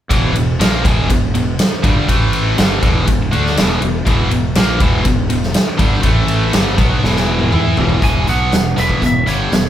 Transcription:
0.10 E1 E2 B2 E3, kick, ride
0.34 E1 E2 B2, ride
0.60 A#1 A#2 F3 A#3, snare, ride
0.84 E1 E2 B2 E3, kick, ride
1.09 E1 E2 B2, kick, ride
1.34 E1 E2 B2, ride
1.59 snare, ride
1.83 G1 G2 D3 G3, kick, ride
2.08 A1 A2 E3 A3, kick, ride
2.33 ride
2.57 G1 G2 D3 G3, snare, ride
2.82 E1 E2 B2 E3, kick, ride
3.07 E1 E2 B2, kick, ride
3.31 D2 D3 A3 D4, ride
3.46 snare
3.57 E1 E2 B2 E3, snare, ride
3.81 E1 E2 B2, ride
4.05 E1 E2 B2 E3, kick, ride
4.30 E1 E2 B2, ride
4.55 A#1 A#2 F3 A#3, snare, ride
4.80 E1 E2 B2 E3, kick, ride
5.04 E1 E2 B2, kick, ride
5.30 E1 E2 B2, ride
5.43 snare
5.54 snare, ride
5.77 G1 G2 D3 G3, kick, ride
6.02 A1 A2 E3 A3, kick, ride
6.28 ride
6.53 G1 G2 D3 G3, snare, ride
6.77 B1 B2 F#3 B3, kick, ride
7.03 E1 E2 B2 E3, snare
7.16 snare
7.40 high tom
7.52 E2 E3 B3 E4, mid tom
7.77 E1 E2 B2 E3, floor tom
7.89 floor tom
8.02 E1 E2 B2 E3 G#5, kick, closed hi-hat
8.27 B1 B2 F#3 B3 F#5, closed hi-hat
8.52 E1 E2 B2, snare, closed hi-hat
8.76 E1 E2 B2 E3 E5, closed hi-hat
8.89 kick
9.02 E1 E2 B2, kick, closed hi-hat
9.06 E5
9.26 G1 G2 D3 G3 C#5, closed hi-hat
9.51 E1 E2 B2, snare, closed hi-hat

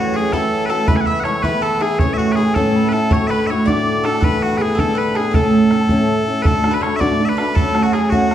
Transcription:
Already playing: A2 E3 F#3 A3 C#4 F#4 F#5
0.13 F#3 A3 C#4 F#4 G#4 G#5
0.32 F#3 A3 C#4 F#4 A4 B5, bodhran
0.37 A5
0.66 A4 B4
0.70 A3 C#4 F#4 A4 A5, bodhran
0.88 E3 G#3 B3 E4 B4 B5, bodhran
0.96 G#5
1.01 F#5
1.06 E5 E6, bodhran
1.20 C#5 F#5
1.25 E3 G#3 B3 E4 C#5 C#6, bodhran
1.43 E3 G#3 B3 E4 B4 B5, bodhran
1.62 A4 B5
1.67 A5
1.80 B3 E4 G#4 G#5, bodhran
1.99 A2 E3 A3 C#4 E4 C#5 C#6, bodhran
2.14 F#4 E5
2.18 F#4, bodhran
2.32 G#4 B4
2.37 E3 A3 C#4 E4 G#4 B5
2.42 G#5
2.55 A2 E3 A3 C#4 E4 A4 A5, bodhran
2.76 B5
2.89 A4 B4, bodhran
2.93 A3 C#4 E4 A4 A5
3.11 D2 A2 D3 A3 D4 F#4 C#5 C#6, bodhran
3.27 B4 E5 B5, bodhran
3.47 D3 D4 C#5 E5 E6
3.51 A3 F#4 C#6
3.66 D2 A2 D3 A3 D4 F#4 D5 D6, bodhran
4.03 A3 D4 F#4 A4, bodhran
4.08 D3
4.21 D3 E3 B3 D4 B4 B5, bodhran
4.25 G#4
4.41 F#4 F#5, bodhran
4.58 D3 B3 D4 G#4 B4 G#5
4.62 G#4
4.75 D4 G#4 A4 A5, bodhran
4.79 D3 E3 B3 A4
4.95 B4 B5
5.15 B3 D4 G#4 G#5, bodhran
5.31 A2 A3 C#4 E4 A4 G#5, bodhran
5.36 A4
5.47 A5
5.52 bodhran
5.71 A3 C#4 E4 A4, bodhran
5.89 A2 A3 C#4 E4 A4, bodhran
6.26 C#4 E4 A4
6.42 D2 A2 A4 B4 A5, bodhran
6.46 D3 A3 D4 F#4 A4
6.63 D3 A3 D4 F#4, bodhran
6.71 B4 B5
6.81 D3 A3 D4 C#5 C#6, bodhran
6.86 F#4
6.96 D5 E5
7.00 D2 A2 D3 A3 D4 F#4 D5 D6, bodhran
7.10 bodhran
7.20 D3 A3 D4 F#4
7.25 B4 E5
7.29 B5
7.37 A3 D4 F#4 B4 B5, bodhran
7.41 D3
7.55 F#3 A3 C#4 F#4 A4 A5, bodhran
7.75 A3 C#4 F#4, bodhran
7.83 F#4 F#5
7.93 F#3 A3 C#4 F#4 G#4 G#5 B5, bodhran
8.03 G#4
8.10 A3 C#4 F#4 F#5, bodhran
8.14 F#3
8.22 bodhran
8.31 bodhran

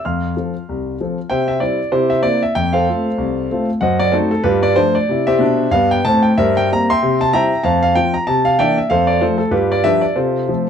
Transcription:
0.05 F2 F5 C6 F6
0.36 F3 C4 A4
0.69 C2
1.01 F3 C4 A4
1.30 C3 C5 E5 G5
1.48 E5
1.60 G3 C4 E4 D5
1.92 C3 E4 G4 C5
2.10 E5
2.23 A#3 C4 E4 D5
2.43 E5
2.55 F2 G5
2.73 A4 C5 F5
2.89 A3 C4 F4
3.18 C2
3.51 A3 C4 F4
3.81 F#2 C5 D#5 F#5
3.99 D5
4.12 A3 C4 D#4 F#4 A4 C5
4.31 A4
4.44 G2 F4 G4 B4
4.63 D5
4.76 F3 A3 D4 C5
4.95 D5
5.09 C3 E4
5.27 G4 C5 E5
5.39 B2 D4
5.71 G2 B3 F5
5.91 G5
6.05 A2 C4 A5
6.23 G5
6.38 G2 A#4 C5 E5
6.57 G5
6.72 G3 A#3 C4 A#5
6.90 E5 G5 C6
7.03 C3
7.21 A5
7.33 G3 C4 E4 E5 G5 A#5
7.63 F2 C5 F5 A5
7.82 F5
7.95 F3 C4 F4 G5
8.14 A#5
8.27 C3 A5
8.45 F5
8.59 E3 A#3 D4 D5 E5 G5
8.78 E5
8.90 F2 A4 C5 F5
9.07 D5
9.21 F3 A3 F4 A4 C5
9.38 A4
9.51 G2 F4 G4 B4
9.72 D5
9.84 F3 G3 D4 G4 B4 E5
10.01 D5
10.16 C3 F4 A4 C5
10.49 F3 A3 C4

